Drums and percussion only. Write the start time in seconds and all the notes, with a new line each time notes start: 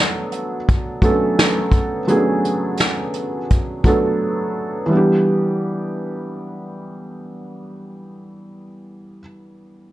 0.32 closed hi-hat
0.68 kick, closed hi-hat
1.02 kick, closed hi-hat
1.39 snare, closed hi-hat
1.72 kick, closed hi-hat
2.08 closed hi-hat
2.45 closed hi-hat
2.77 snare, closed hi-hat
3.14 closed hi-hat
3.50 kick, closed hi-hat
3.84 kick, closed hi-hat